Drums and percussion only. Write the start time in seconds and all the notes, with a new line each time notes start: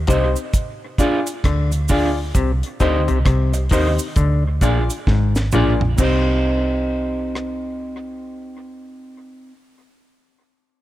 0.07 kick, closed hi-hat, cabasa
0.36 cabasa
0.54 kick, closed hi-hat, cabasa
0.98 kick, closed hi-hat, cabasa
1.27 closed hi-hat, cabasa
1.44 kick, cross-stick, closed hi-hat
1.72 closed hi-hat, cabasa
1.88 kick, open hi-hat, cabasa
2.35 kick, closed hi-hat, cabasa
2.63 closed hi-hat
2.80 kick, closed hi-hat, cabasa
3.08 closed hi-hat
3.25 kick, cross-stick, closed hi-hat
3.54 closed hi-hat, cabasa
3.69 kick, open hi-hat, cabasa
3.99 cabasa
4.16 kick, closed hi-hat, cabasa
4.61 kick, closed hi-hat, cabasa
4.90 closed hi-hat, cabasa
5.07 kick, snare
5.36 snare, cabasa
5.52 mid tom, cabasa
5.81 floor tom
5.98 kick, crash, cabasa
7.35 cross-stick